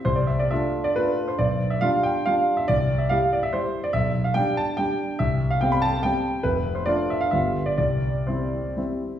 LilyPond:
\new Staff \with { instrumentName = "Grand piano" } { \time 3/4 \key c \major \tempo 4 = 138 << { c''16 d''16 e''16 d''16 e''8. d''16 b'8. c''16 | d''8. e''16 f''8 g''8 f''8. e''16 | d''8. e''16 f''8 d''16 e''16 c''8. d''16 | e''8. f''16 g''8 a''8 g''4 |
e''8. f''16 g''16 b''16 a''8 g''4 | b'8. c''16 d''8 e''16 f''16 e''8. d''16 | d''4 c''4 r4 | } \\ { c,4 <a d' f'>4 <a d' f'>4 | b,,4 <g d' f'>4 <g d' f'>4 | c,4 <g e' g'>4 <g e' g'>4 | b,,4 <g d' g'>4 <g d' g'>4 |
c,4 <g c' g'>4 <g c' g'>4 | f,,4 <a d' f'>4 <g,, g b f'>4 | c,4 <g c' e'>4 <g c' e'>4 | } >> }